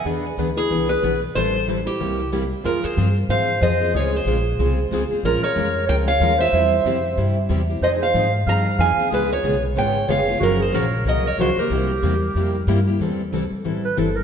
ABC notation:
X:1
M:4/4
L:1/8
Q:"Swing" 1/4=185
K:Ephr
V:1 name="Steel-string acoustic guitar"
z3 ^G2 B2 z | c2 z G3 z2 | [K:Fm] B c2 z f2 e2 | d c4 z3 |
B d3 g f2 =e- | =e4- e z3 | e f2 z b2 a2 | _c d2 z g2 f2 |
B c d2 e d c B- | B6- B z | [K:Am] z8 |]
V:2 name="Clarinet"
z3 E2 ^G2 z | A2 z E3 z2 | [K:Fm] F A2 z c2 c2 | A A4 z3 |
F B3 d d2 c- | c4- c z3 | c c2 z f2 f2 | A A2 z d2 d2 |
_G A B2 B B G =G- | G6- G z | [K:Am] z4 z B A _B |]
V:3 name="Steel-string acoustic guitar"
[E,B,D^G] z [E,B,DG] z [E,B,DG] z [E,B,DG] z | [E,G,CEA] z [E,G,CEA] z [C,G,_B,EG] z [C,G,B,EG] z | [K:Fm] [F,CFA] z [F,CFA] z [F,CFA] z [F,CFA] [CFA] | [D,A,CFA] z [D,A,CFA] z [D,A,CFA] z [D,A,CFA] [CFA] |
[F,A,DFB] z [F,A,DFB] z [F,A,DFB] z [F,A,DFB] [DFB] | [C,G,C=EG] z [C,G,CEG] z [C,G,CEG] z [C,G,CEG] [CEG] | [F,CEA] z [F,CEA] z [F,CEA] z [F,CEA] [CEA] | [D,A,_CFA] z [D,A,CFA] z [D,A,CFA] z [D,A,CFA] [CFA] |
[D,F,B,D_G] z [D,F,B,DG] z [D,F,B,DG] z [D,F,B,DG] [B,DG] | [C,G,B,=EG] z [C,G,B,EG] z [C,G,B,EG] z [C,G,B,EG] [B,EG] | [K:Am] [E,G,CEA] z [E,G,CEA] z [E,G,CEA] z [E,G,CEA] z |]
V:4 name="Steel-string acoustic guitar"
[E,B,D^GB] z [E,B,DGB] z [E,B,DGB] z [E,B,DGB] z | [E,G,CEA] z [E,G,CEA] z [C,G,_B,EG] z [C,G,B,EG] z | [K:Fm] [F,CFA] z [F,CFA] z [F,CFA] z [F,CFA] z | [D,A,CFA] z [D,A,CFA] z [D,A,CFA] z [D,A,CFA] z |
[F,A,DFB] z [F,A,DFB] z [F,A,DFB] z [F,A,DFB] z | [C,G,C=EG] z [C,G,CEG] z [C,G,CEG] z [C,G,CEG] z | [F,CEA] z [F,CEA] z [F,CEA] z [F,CEA] z | [D,A,_CFA] z [D,A,CFA] z [D,A,CFA] z [D,A,CFA] z |
[_G,DFB] z [G,DFB] z [G,DFB] z [G,DFB] z | [C,G,B,=EG] z [C,G,B,EG] z [C,G,B,EG] z [C,G,B,EG] z | [K:Am] [E,G,CEA] z [E,G,CEA] z [E,G,CEA] z [E,G,CEA] z |]
V:5 name="Upright bass" clef=bass
E,,2 D,,2 C,,2 B,,,2 | A,,,4 C,,4 | [K:Fm] F,, z G,,2 A,,2 F,,2 | D,,2 B,,,2 C,,2 D,, z |
B,,, z F,,2 D,,2 E,,2 | =E,,2 F,,2 G,,2 E,,2 | F,,2 A,,2 G,,2 F,, z | D,,2 _C,,2 A,,,2 F,,,2 |
_G,,,2 B,,,2 C,,2 D,, z | C,,2 =E,,2 F,,2 G,,2 | [K:Am] E,,2 C,, z A,,,2 G,,,2 |]